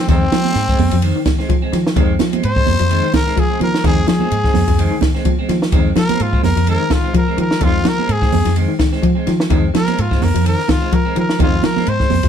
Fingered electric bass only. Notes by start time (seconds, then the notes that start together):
Already playing: F3
0.09 F2
0.31 F3
0.55 G#2
0.79 F2
0.93 F2
1.50 F3
1.73 F3
1.97 F2
2.20 F3
2.44 G#2
2.68 F2
2.81 F2
3.38 F3
3.61 F3
3.85 F2
4.08 F3
4.32 G#2
4.55 F2
4.68 F2
5.26 F3
5.49 F3
5.73 F2
5.96 F3
6.20 G#2
6.44 F2
6.57 F2
7.15 F3
7.38 F3
7.62 F2
7.85 F3
8.09 G#2
8.33 F2
8.46 F2
9.04 F3
9.28 F3
9.51 F2
9.75 F3
9.99 G#2
10.22 F2
10.35 F2
10.93 F3
11.17 F3
11.40 F2
11.64 F3
11.88 G#2
12.11 F2
12.24 F2